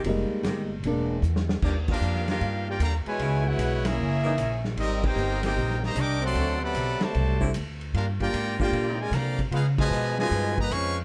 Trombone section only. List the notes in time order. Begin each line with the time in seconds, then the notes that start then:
1.64 G3 A#3 D4
1.89 A#3 D4 F4
2.28 A#3 D4 F4
2.68 A#3 D4 G4
2.81 D3 G3 A#3
3.06 B2 E3 G#3
3.45 G#3 B3 F#4
3.85 A#3 C#4 E4
4.77 G3 C4 D#4
5.03 C4 D#4 G4
5.42 C4 D#4 G4
5.81 D#3 G3 A#3
5.95 D4
6.21 F#3 A3 C4
6.60 C3 F#3 B3
7.01 C3 F#3 A3
7.95 A#3 D4 F4
8.21 A#3 D4 G4
8.59 A#3 D4 G4
8.99 G#3
9.12 D3 F3 A#3
9.51 G#3 B3 F4
9.80 B2 F3 G#3
10.18 B2 F3 G#3
10.58 A#3
10.72 F3 G#3 C#4